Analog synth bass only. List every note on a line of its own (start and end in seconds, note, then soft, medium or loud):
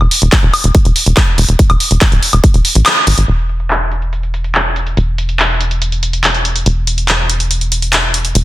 0.01 0.08 E1 medium
0.22 0.29 E1 medium
0.43 0.50 E1 medium
0.64 0.71 E1 medium
0.85 0.92 E1 medium
1.06 1.13 E1 medium
1.38 1.45 E1 medium
1.49 1.56 E1 medium
1.70 1.77 E1 medium
1.91 1.98 E1 medium
2.12 2.19 D1 medium
2.33 2.40 E1 medium
2.54 2.61 E1 medium
2.75 2.82 A1 medium
3.07 3.14 G#1 medium
3.18 3.25 G#1 medium
3.28 4.95 E1 medium
4.97 6.64 E1 medium
6.66 8.33 E1 medium
8.35 8.44 E1 medium